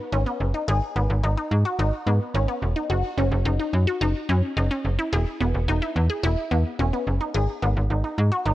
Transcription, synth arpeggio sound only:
0.12 0.23 C#4 medium
0.26 0.48 B3 medium
0.54 0.65 D#4 medium
0.68 0.90 G#4 medium
0.96 1.18 B3 medium
1.23 1.34 D#4 medium
1.37 1.59 D#4 medium
1.65 1.76 F#4 medium
1.79 2.01 D#4 medium
2.07 2.29 B3 medium
2.35 2.46 C#4 medium
2.48 2.70 B3 medium
2.76 2.87 D#4 medium
2.90 3.12 F#4 loud
3.18 3.40 C#4 medium
3.46 3.57 D#4 medium
3.60 3.81 D#4 medium
3.87 3.98 F#4 medium
4.01 4.23 D#4 medium
4.29 4.51 C#4 medium
4.57 4.68 D#4 medium
4.71 4.93 C#4 medium
4.99 5.09 E4 medium
5.12 5.34 G#4 loud
5.40 5.62 B3 medium
5.68 5.79 D#4 medium
5.82 6.04 E4 medium
6.10 6.21 G#4 medium
6.23 6.45 E4 medium
6.51 6.73 B3 medium
6.79 6.90 C#4 medium
6.93 7.15 B3 medium
7.21 7.32 D#4 medium
7.34 7.56 G#4 medium
7.62 7.84 B3 medium
7.90 8.01 D#4 medium
8.04 8.26 D#4 medium
8.32 8.43 F#4 medium
8.46 8.54 D#4 medium

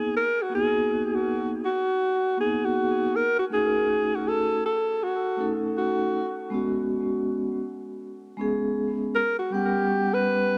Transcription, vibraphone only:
0.00 0.15 A#3 medium
0.00 0.15 B3 medium
0.00 0.16 D#4 medium
0.00 0.17 G#4 medium
0.50 1.55 A#3 medium
0.50 1.56 B3 medium
0.50 1.57 D#4 medium
0.54 1.57 F#4 medium
2.37 3.15 A#3 medium
2.37 3.15 B3 medium
2.37 3.16 D#4 medium
2.37 2.48 G4 medium
2.47 3.20 G#4 medium
3.50 4.56 A3 medium
3.50 4.56 C#4 medium
3.50 4.57 D#4 medium
3.54 4.58 F#4 medium
5.37 6.15 A3 medium
5.37 6.15 C#4 medium
5.37 6.16 D#4 medium
5.37 6.17 A4 medium
6.50 7.56 G#3 medium
6.50 7.56 B3 medium
6.50 7.57 C#4 medium
6.50 7.58 F#4 loud
8.37 9.15 G#3 medium
8.37 9.15 B3 medium
8.37 9.16 C#4 medium
8.37 9.17 G#4 loud
9.50 10.56 G3 medium
9.50 10.56 B3 medium
9.50 10.57 C#4 medium
9.55 10.58 F#5 medium

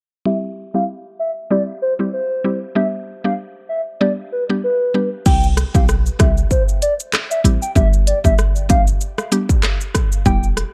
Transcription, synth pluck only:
0.25 0.70 G3 medium
0.25 0.70 C4 medium
0.25 0.70 E4 medium
0.25 0.71 G4 medium
0.74 0.86 G3 medium
0.74 0.86 C4 medium
0.74 0.86 E4 medium
0.74 0.86 G4 medium
1.50 1.65 G3 medium
1.50 1.65 C4 medium
1.50 1.65 E4 medium
1.50 1.66 G4 loud
1.99 2.11 G3 medium
1.99 2.11 C4 medium
1.99 2.11 E4 medium
1.99 2.11 G4 medium
2.44 2.59 G3 medium
2.44 2.59 C4 medium
2.44 2.59 E4 medium
2.44 2.59 G4 medium
2.75 3.20 G3 medium
2.75 3.20 B3 medium
2.75 3.20 D4 medium
2.75 3.21 G4 loud
3.24 3.36 G3 medium
3.24 3.36 B3 medium
3.24 3.36 D4 medium
3.24 3.36 G4 medium
4.01 4.15 G3 medium
4.01 4.15 B3 medium
4.01 4.15 D4 medium
4.01 4.16 G4 loud
4.49 4.61 G3 medium
4.49 4.61 B3 medium
4.49 4.61 D4 medium
4.49 4.61 G4 medium
4.94 5.09 G3 medium
4.94 5.09 B3 medium
4.94 5.09 D4 medium
4.94 5.09 G4 medium
5.26 5.70 G3 medium
5.26 5.70 C4 medium
5.26 5.71 E4 medium
5.26 5.71 G4 loud
5.74 5.86 G3 medium
5.74 5.86 C4 medium
5.74 5.86 E4 medium
5.74 5.86 G4 medium
6.19 6.34 G3 medium
6.19 6.34 C4 medium
6.19 6.34 E4 medium
6.19 6.34 G4 medium
7.44 7.59 G3 medium
7.44 7.59 C4 medium
7.44 7.59 E4 medium
7.44 7.59 G4 medium
7.75 8.20 G3 loud
7.75 8.20 B3 medium
7.75 8.20 D4 medium
7.75 8.21 G4 loud
8.24 8.36 G3 medium
8.24 8.36 B3 medium
8.24 8.36 D4 medium
8.24 8.36 G4 medium
8.69 8.84 G3 medium
8.69 8.84 B3 medium
8.69 8.84 D4 medium
8.69 8.84 G4 medium
9.32 9.46 G3 medium
9.32 9.47 B3 medium
9.32 9.47 D4 medium
9.32 9.47 G4 medium
10.26 10.70 G3 medium
10.26 10.70 B3 medium
10.26 10.71 E4 medium
10.26 10.71 G4 loud

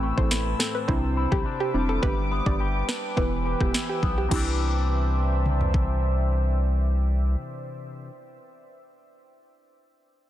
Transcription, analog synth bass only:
0.00 0.12 A1 loud
0.18 0.54 A1 medium
0.89 1.27 C2 loud
1.32 1.44 B1 medium
1.74 1.99 F1 medium
2.03 2.41 G1 loud
2.46 2.83 G1 loud
3.17 3.55 E1 loud
3.61 3.72 E1 medium
4.03 4.28 B1 medium
4.31 7.36 C2 loud

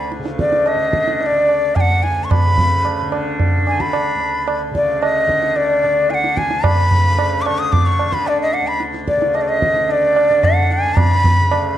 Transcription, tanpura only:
0.00 1.88 D2 medium
0.00 0.18 C#3 medium
0.00 0.76 D3 medium
0.19 2.44 C#3 medium
0.76 1.32 D3 medium
1.32 3.02 D3 medium
1.88 4.14 D2 medium
2.45 4.70 C#3 medium
3.02 3.57 D3 medium
3.57 5.27 D3 medium
4.15 6.38 D2 medium
4.71 6.93 C#3 medium
5.27 5.84 D3 medium
5.84 7.50 D3 medium
6.39 8.61 D2 medium
6.94 9.16 C#3 medium
7.50 8.06 D3 medium
8.06 9.73 D3 medium
8.61 10.84 D2 medium
9.17 11.40 C#3 medium
9.73 10.30 D3 medium
10.30 11.78 D3 medium
10.84 11.78 D2 medium
11.41 11.78 C#3 medium

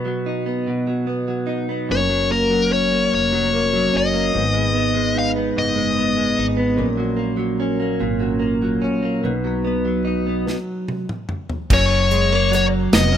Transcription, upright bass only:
1.90 3.09 F#1 medium
3.14 3.91 F1 medium
3.95 4.33 F#1 medium
4.35 5.53 G#1 medium
5.57 6.34 F#1 medium
6.39 6.77 G#1 medium
6.78 7.97 A#1 medium
8.01 8.79 G#1 medium
8.84 9.22 A#1 medium
9.25 10.43 B1 medium
11.70 12.89 F#1 medium
12.93 13.17 F1 medium

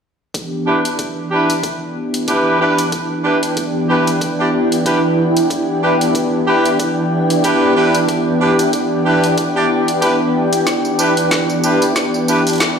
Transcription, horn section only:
0.67 0.80 D4 medium
0.67 0.80 E4 medium
0.67 0.80 G4 medium
0.67 0.80 B4 medium
1.31 1.52 D4 medium
1.31 1.52 E4 medium
1.31 1.52 G4 medium
1.31 1.52 B4 medium
2.28 2.57 D4 medium
2.28 2.57 E4 medium
2.28 2.57 G4 medium
2.28 2.57 B4 loud
2.60 2.81 D4 loud
2.60 2.81 E4 medium
2.60 2.81 G4 medium
2.60 2.81 B4 loud
3.24 3.38 D4 medium
3.24 3.38 E4 medium
3.24 3.38 G4 medium
3.24 3.38 B4 medium
3.89 4.10 D4 medium
3.89 4.10 E4 medium
3.89 4.10 G4 medium
3.89 4.10 B4 medium
4.40 4.50 D4 medium
4.40 4.50 E4 medium
4.40 4.50 G4 medium
4.40 4.50 D5 loud
4.86 5.00 D4 medium
4.86 5.00 E4 medium
4.86 5.00 G4 medium
4.86 5.00 B4 loud
5.83 5.97 D4 medium
5.83 5.97 E4 medium
5.83 5.97 G4 medium
5.83 5.97 B4 medium
6.47 6.68 D4 medium
6.47 6.68 E4 medium
6.47 6.68 G4 medium
6.47 6.68 B4 medium
7.44 7.73 D4 medium
7.44 7.73 E4 medium
7.44 7.73 G4 medium
7.44 7.73 B4 loud
7.77 7.97 D4 loud
7.77 7.98 E4 medium
7.77 7.98 G4 medium
7.77 7.98 B4 loud
8.41 8.55 D4 medium
8.41 8.55 E4 medium
8.41 8.55 G4 medium
8.41 8.55 B4 loud
9.05 9.26 D4 medium
9.05 9.26 E4 medium
9.05 9.26 G4 medium
9.05 9.26 B4 medium
9.56 9.66 D4 medium
9.56 9.66 E4 medium
9.56 9.66 G4 medium
9.56 9.66 D5 loud
10.02 10.16 D4 medium
10.02 10.16 E4 medium
10.02 10.16 G4 medium
10.02 10.16 B4 loud
10.99 11.13 D4 medium
10.99 11.13 E4 medium
10.99 11.13 G4 medium
10.99 11.13 B4 medium
11.64 11.85 D4 medium
11.64 11.85 E4 medium
11.64 11.85 G4 medium
11.64 11.85 B4 medium
12.28 12.42 D4 medium
12.28 12.42 E4 medium
12.28 12.42 G4 medium
12.28 12.42 B4 medium

